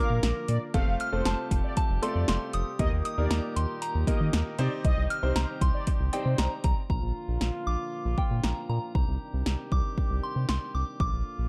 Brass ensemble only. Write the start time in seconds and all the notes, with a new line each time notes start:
Already playing: D3 F3 A#3 F4 A#4
0.74 C3 G3 A3 G4
2.79 A#2 D#3 D#4 G4
4.59 C3 G3 G4
6.90 A#2 D3 F3 D4 F4
8.95 C3 D#3 G3 G4
11.00 A#2 D3 F3 F4